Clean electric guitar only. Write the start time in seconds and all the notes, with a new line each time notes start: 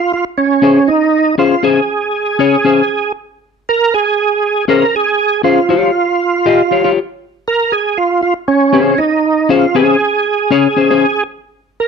0.62 C#4 G#4 C5
1.38 C#4 G#4 C5
1.63 C#4 G#4 C5
2.39 C#4 G#4 C#5
2.65 C#4 G#4 C5
4.68 C#4 G#4 C5
5.43 C#4 G#4 C5
5.69 F4 G4 C#5
6.46 F4 G4 D#5
6.71 F4 G4 C#5
6.84 F4 G4 C#5
8.73 C#4 G#4 C5
9.49 C#4 G#4 C5
9.75 C#4 G#4 C5
10.51 C#4 G#4 C#5
10.77 C#4 G#4 C5
10.91 C#4 G#4 C5